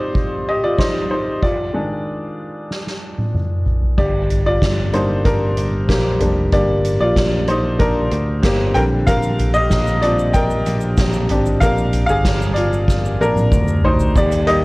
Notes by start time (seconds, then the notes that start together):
Already playing: D#3 G3 C4 D#4 F4 G4 C5 D5 D#5
0.15 kick
0.48 G4 D#5
0.64 F4 D5
0.79 D#4 C5, kick, snare
1.11 D#4 C5
1.43 F4 D5, kick, crash
1.74 D#3 G#3 D4
2.71 snare
2.87 snare
3.19 high tom
3.35 mid tom
3.66 floor tom
3.82 floor tom
3.98 G1 G4 D5, kick, crash
4.30 closed hi-hat, floor tom
4.46 F4 D5
4.62 G1, kick, snare, closed hi-hat
4.93 G3 A#3 D4 D#4 C5, closed hi-hat
5.25 D4 A#4, kick, closed hi-hat
5.57 G1, closed hi-hat
5.89 A#1 A#3 G4, kick, snare, closed hi-hat
6.20 F1 G3 A#3 D4, closed hi-hat, floor tom
6.52 G1 G3 A#3 D4 G4 D5, kick, closed hi-hat
6.85 closed hi-hat
7.00 A#1 F4 D5
7.16 kick, snare, closed hi-hat
7.47 D#4 C5, closed hi-hat
7.79 D4 A#4, kick, closed hi-hat
8.11 D2, closed hi-hat
8.43 G1 A#3 G4, kick, snare, closed hi-hat
8.74 A#1 D3 G3 C4 A#4 G5, closed hi-hat, floor tom
9.07 A#4 F5, kick, closed hi-hat, shaker
9.23 shaker
9.39 closed hi-hat, floor tom, shaker
9.54 G4 D#5, shaker
9.70 A#1, kick, snare, closed hi-hat, shaker
9.87 shaker
10.02 G3 C4 D4 F4 D5, closed hi-hat
10.19 shaker
10.33 A#4 G5, kick, closed hi-hat, shaker
10.50 shaker
10.66 A#1, closed hi-hat, shaker
10.81 shaker
10.97 A#1, kick, snare, closed hi-hat, shaker
11.13 shaker
11.29 G#1 C4 D4 G4, closed hi-hat, floor tom
11.46 shaker
11.60 A#1 A#4 F5, kick, closed hi-hat, shaker
11.78 shaker
11.93 closed hi-hat, floor tom, shaker
12.06 G1 G#4 F5, shaker
12.25 kick, snare, closed hi-hat, shaker
12.42 shaker
12.54 F4 D5, closed hi-hat
12.73 shaker
12.88 kick, snare, shaker
13.05 shaker
13.21 A#1 D4 A#4, shaker
13.36 high tom, shaker
13.52 D2, kick, mid tom, shaker
13.68 shaker
13.83 D2 D#4 C5, floor tom
13.99 floor tom, shaker
14.15 D#2 G4 D5, kick, crash, shaker
14.32 closed hi-hat, shaker
14.46 G3 A#3 D#4 G4 D#5, closed hi-hat